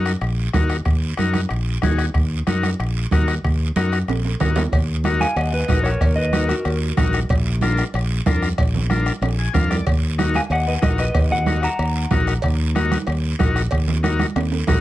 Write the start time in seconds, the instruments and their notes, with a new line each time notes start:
Already playing: fingered electric bass F#2, transistor combo organ D#4 F#4 A#4
0.06 bombo rim, high timbale, short guiro
0.21 fingered electric bass A#1, bombo rim, high timbale, long guiro
0.53 fingered electric bass D#2, transistor combo organ D#4 F#4 A#4, bombo low, bombo rim, high conga, high timbale, low timbale, short guiro
0.69 bombo rim, high timbale, short guiro
0.85 fingered electric bass D#2, bombo low, bombo rim, high timbale, long guiro
1.17 fingered electric bass F#2, transistor combo organ D#4 F#4 A#4, bombo rim, high conga, high timbale, short guiro
1.33 bombo rim, high conga, high timbale, short guiro
1.49 fingered electric bass A#1, bombo rim, high timbale, long guiro
1.82 fingered electric bass D#2, transistor combo organ D#4 F#4 G#4, bombo low, bombo rim, high conga, high timbale, low timbale, short guiro
1.98 bombo rim, high timbale, short guiro
2.14 fingered electric bass D#2, bombo low, bombo rim, high timbale, long guiro
2.47 fingered electric bass F#2, transistor combo organ D#4 F#4 A#4, bombo rim, high conga, high timbale, short guiro
2.63 bombo rim, high conga, high timbale, short guiro
2.79 fingered electric bass A#1, bombo rim, high timbale, long guiro
3.11 fingered electric bass D#2, transistor combo organ D#4 F#4 A#4, bombo low, bombo rim, high conga, high timbale, short guiro
3.28 bombo rim, high timbale, short guiro
3.44 fingered electric bass D#2, bombo low, bombo rim, high timbale, long guiro
3.76 fingered electric bass F#2, transistor combo organ D#4 F#4 A#4, bombo rim, high conga, high timbale, short guiro
3.92 bombo rim, high timbale, short guiro
4.08 fingered electric bass A#1, bombo rim, high timbale, long guiro
4.25 high timbale
4.40 fingered electric bass D#2, transistor combo organ D#4 F#4 A#4, bombo low, bombo rim, low conga, low timbale, short guiro
4.56 bombo rim, low conga, low timbale, short guiro
4.72 fingered electric bass D#2, bombo low, bombo rim, cowbell, long guiro
5.04 transistor combo organ D#4 F#4 A#4, bombo rim, high conga, short guiro
5.20 clean electric guitar F5 G#5, bombo rim, high conga, short guiro
5.36 fingered electric bass D#2, clean electric guitar D#5 F#5, bombo rim, cowbell, long guiro
5.52 clean electric guitar B4 D#5
5.68 fingered electric bass A#1, transistor combo organ D#4 F#4 A#4, bombo low, bombo rim, high conga, low timbale, short guiro
5.84 clean electric guitar A#4 C#5, bombo rim, short guiro
6.01 fingered electric bass D#2, bombo low, bombo rim, cowbell, long guiro
6.16 clean electric guitar B4 D#5
6.33 transistor combo organ D#4 F#4 A#4, bombo rim, high conga, short guiro
6.48 clean electric guitar F#4 A#4, bombo rim, high conga, short guiro
6.65 fingered electric bass D#2, bombo rim, cowbell, long guiro
6.97 fingered electric bass A#1, transistor combo organ D#4 F#4 A#4, bombo low, bombo rim, high conga, low conga, short guiro
7.13 bombo rim, short guiro
7.29 fingered electric bass A#1, bombo low, bombo rim, cowbell, long guiro
7.61 transistor combo organ D4 F4 A#4, bombo rim, high conga, short guiro
7.77 bombo rim, short guiro
7.94 fingered electric bass A#1, bombo rim, cowbell, long guiro
8.26 fingered electric bass F2, transistor combo organ D4 F4 A#4, bombo low, bombo rim, high conga, low timbale, short guiro
8.42 bombo rim, short guiro
8.58 fingered electric bass A#1, bombo low, bombo rim, cowbell, long guiro
8.74 low conga
8.90 transistor combo organ D4 F4 A#4, bombo rim, high conga, short guiro
9.06 bombo rim, short guiro
9.21 fingered electric bass A#1, bombo rim, cowbell, high timbale, long guiro
9.39 transistor combo organ G#5
9.53 fingered electric bass F2, transistor combo organ D4 F4 A#4 F5, bombo low, bombo rim, high conga, low conga, short guiro
9.70 transistor combo organ D5, bombo rim, low timbale, short guiro
9.87 fingered electric bass D#2, bombo low, bombo rim, cowbell, long guiro
10.18 transistor combo organ D#4 F#4 A#4, bombo rim, high conga, short guiro
10.34 clean electric guitar F5 G#5, bombo rim, high conga, short guiro
10.50 fingered electric bass D#2, clean electric guitar D#5 F#5, bombo rim, cowbell, long guiro
10.67 clean electric guitar B4 D#5
10.82 fingered electric bass A#1, transistor combo organ D#4 F#4 A#4, clean electric guitar A#4 D#5, bombo low, bombo rim, high conga, low timbale, short guiro
10.98 clean electric guitar B4 D#5, bombo rim, short guiro
11.14 fingered electric bass D#2, bombo low, bombo rim, cowbell, long guiro
11.31 clean electric guitar D#5 F#5, low conga
11.46 transistor combo organ D#4 F#4 A#4, bombo rim, high conga, short guiro
11.63 clean electric guitar F#5 A#5, bombo rim, short guiro
11.79 fingered electric bass D#2, bombo rim, cowbell, long guiro
12.11 fingered electric bass A#1, transistor combo organ D#4 F#4 A#4, bombo low, bombo rim, high conga, low conga, low timbale, short guiro
12.27 bombo rim, short guiro
12.42 fingered electric bass D#2, bombo low, bombo rim, cowbell, long guiro
12.75 transistor combo organ D#4 F#4 A#4, bombo rim, high conga, short guiro
12.92 bombo rim, high conga, short guiro
13.07 fingered electric bass D#2, bombo rim, cowbell, long guiro
13.39 fingered electric bass A#1, transistor combo organ D#4 F#4 A#4, bombo low, bombo rim, high conga, low timbale, short guiro
13.56 bombo rim, short guiro
13.71 fingered electric bass D#2, bombo low, bombo rim, cowbell, long guiro
13.87 low conga
14.03 transistor combo organ D#4 F#4 A#4, bombo rim, high conga, short guiro
14.19 bombo rim, high conga, short guiro
14.36 fingered electric bass D#2, bombo rim, cowbell, high timbale, long guiro
14.52 high timbale
14.67 fingered electric bass A#1, transistor combo organ D#4 F#4 A#4, bombo low, bombo rim, high conga, low conga, low timbale, short guiro